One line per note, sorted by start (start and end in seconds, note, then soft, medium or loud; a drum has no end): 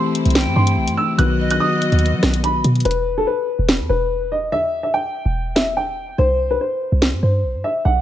0.00 1.17 C3 medium
0.00 1.15 E3 medium
0.00 1.15 A3 medium
0.00 1.17 A3 medium
0.00 1.15 C4 medium
0.00 1.17 E4 medium
0.00 1.16 G4 medium
0.00 1.16 C5 medium
0.00 0.53 C6 medium
0.15 closed hi-hat medium
0.26 0.48 C2 loud
0.26 closed hi-hat soft
0.30 closed hi-hat medium
0.35 1.15 G5 loud
0.35 snare loud
0.35 closed hi-hat medium
0.41 closed hi-hat medium
0.46 0.56 G2 loud
0.56 0.79 G2 loud
0.56 0.95 C6 medium
0.67 closed hi-hat medium
0.77 0.90 B1 loud
0.88 0.97 G2 loud
0.88 closed hi-hat medium
0.97 1.14 E6 medium
1.17 1.59 B1 loud
1.17 2.81 D#3 medium
1.17 2.82 F#3 medium
1.17 2.82 B3 medium
1.17 2.84 B3 medium
1.17 2.84 F#4 medium
1.17 2.82 F#4 medium
1.17 2.82 B4 medium
1.17 2.84 D#5 medium
1.17 1.48 F#6 medium
1.17 closed hi-hat medium
1.39 2.40 D#5 medium
1.51 1.59 F#6 medium
1.51 closed hi-hat medium
1.60 2.40 D#6 loud
1.82 closed hi-hat medium
1.92 2.15 D#2 loud
1.92 closed hi-hat soft
1.99 closed hi-hat medium
2.06 closed hi-hat medium
2.13 2.22 F#3 loud
2.23 2.63 B1 loud
2.23 cross-stick loud
2.23 snare loud
2.34 closed hi-hat medium
2.44 2.60 B5 medium
2.44 closed hi-hat medium
2.64 2.84 B2 loud
2.64 closed hi-hat medium
2.75 closed hi-hat soft
2.80 closed hi-hat soft
2.85 3.25 E1 loud
2.85 3.15 B4 medium
2.85 closed hi-hat medium
2.91 closed hi-hat medium
3.18 3.25 A4 medium
3.27 3.86 B4 medium
3.59 3.81 E1 loud
3.69 snare loud
3.80 3.89 E2 loud
3.89 4.53 E1 loud
3.89 4.29 B4 medium
4.32 4.48 D#5 medium
4.52 5.11 E2 loud
4.52 4.82 E5 medium
4.83 4.91 E5 medium
4.94 5.53 G5 medium
5.25 6.15 E1 loud
5.56 5.72 E5 medium
5.56 snare loud
5.77 6.16 G5 medium
6.18 6.59 C2 loud
6.18 6.48 C5 loud
6.51 6.58 B4 medium
6.61 7.19 C5 medium
6.92 7.15 C2 loud
7.02 snare loud
7.13 7.22 G2 loud
7.23 7.45 G2 loud
7.23 7.62 C5 medium
7.44 7.56 B1 medium
7.55 7.64 G2 loud
7.64 7.81 E5 medium
7.85 8.02 B1 loud
7.85 8.02 F#5 medium